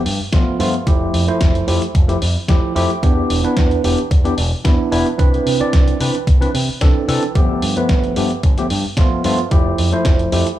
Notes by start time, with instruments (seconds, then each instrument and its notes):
0.05 fingered electric bass G2, open hi-hat
0.20 muted fingered electric bass stroke
0.32 fingered electric bass G1, tine electric piano F3 A3 B3 F4, kick, snare, closed hi-hat
0.59 fingered electric bass G2, tine electric piano F3 A3 B3 F4, open hi-hat
0.74 closed hi-hat
0.87 fingered electric bass F1, tine electric piano F3 A3 E4 G4, kick, closed hi-hat
1.13 fingered electric bass F2, open hi-hat
1.28 tine electric piano F3 A3 E4 C5, muted fingered electric bass stroke, closed hi-hat
1.41 fingered electric bass F1, kick, snare, closed hi-hat
1.55 closed hi-hat
1.67 fingered electric bass F2, tine electric piano F3 A3 E4 G4, open hi-hat
1.82 closed hi-hat
1.95 fingered electric bass F1, kick, closed hi-hat
2.08 tine electric piano F3 A3 E4 G4, closed hi-hat
2.22 fingered electric bass F2, open hi-hat
2.36 muted fingered electric bass stroke
2.48 fingered electric bass F1, tine electric piano F3 A3 E4 G4, kick, snare, closed hi-hat
2.75 fingered electric bass F2, tine electric piano F3 A3 E4 G4, open hi-hat
2.90 closed hi-hat
3.02 fingered electric bass E2, tine electric piano E3 B3 D4 G4, kick, closed hi-hat
3.30 fingered electric bass E1, open hi-hat
3.44 tine electric piano E3 B3 D4 B4, muted fingered electric bass stroke, closed hi-hat
3.57 fingered electric bass E2, kick, snare, closed hi-hat
3.71 closed hi-hat
3.84 fingered electric bass E1, tine electric piano E3 B3 D4 G4, open hi-hat
3.98 closed hi-hat
4.11 fingered electric bass E2, kick, closed hi-hat
4.24 tine electric piano E3 B3 D4 G4, closed hi-hat
4.38 fingered electric bass E1, open hi-hat
4.52 muted fingered electric bass stroke
4.64 fingered electric bass E2, tine electric piano E3 B3 D4 E4, kick, snare, closed hi-hat
4.91 fingered electric bass E1, tine electric piano E3 B3 D4 E4, open hi-hat
5.06 closed hi-hat
5.18 fingered electric bass C2, tine electric piano E3 C4 D4 B4, kick, closed hi-hat
5.34 closed hi-hat
5.46 fingered electric bass C3, open hi-hat
5.60 tine electric piano E3 C4 D4 D5, muted fingered electric bass stroke, closed hi-hat
5.73 fingered electric bass C2, kick, snare, closed hi-hat
5.88 closed hi-hat
6.00 fingered electric bass C3, tine electric piano E3 C4 D4 B4, open hi-hat
6.15 closed hi-hat
6.27 fingered electric bass C2, kick, closed hi-hat
6.41 tine electric piano E3 C4 D4 B4, closed hi-hat
6.54 fingered electric bass C3, open hi-hat
6.69 muted fingered electric bass stroke
6.81 fingered electric bass C2, tine electric piano E3 C4 D4 A4, kick, snare, closed hi-hat
7.08 fingered electric bass C3, tine electric piano E3 C4 D4 A4, open hi-hat
7.23 closed hi-hat
7.35 fingered electric bass G1, tine electric piano F3 A3 B3 G4, kick, closed hi-hat
7.62 fingered electric bass G2, open hi-hat
7.76 tine electric piano F3 A3 B3 B4, muted fingered electric bass stroke, closed hi-hat
7.89 fingered electric bass G1, kick, snare, closed hi-hat
8.04 closed hi-hat
8.16 fingered electric bass G2, tine electric piano F3 A3 B3 G4, open hi-hat
8.31 closed hi-hat
8.43 fingered electric bass G1, kick, closed hi-hat
8.58 tine electric piano F3 A3 B3 G4, closed hi-hat
8.70 fingered electric bass G2, open hi-hat
8.85 muted fingered electric bass stroke
8.97 fingered electric bass G1, tine electric piano F3 A3 B3 F4, kick, snare, closed hi-hat
9.24 fingered electric bass G2, tine electric piano F3 A3 B3 F4, open hi-hat
9.39 closed hi-hat
9.51 fingered electric bass F1, tine electric piano F3 A3 E4 G4, kick, closed hi-hat
9.78 fingered electric bass F2, open hi-hat
9.92 tine electric piano F3 A3 E4 C5, muted fingered electric bass stroke, closed hi-hat
10.05 fingered electric bass F1, kick, snare, closed hi-hat
10.19 closed hi-hat
10.32 fingered electric bass F2, tine electric piano F3 A3 E4 G4, open hi-hat
10.47 closed hi-hat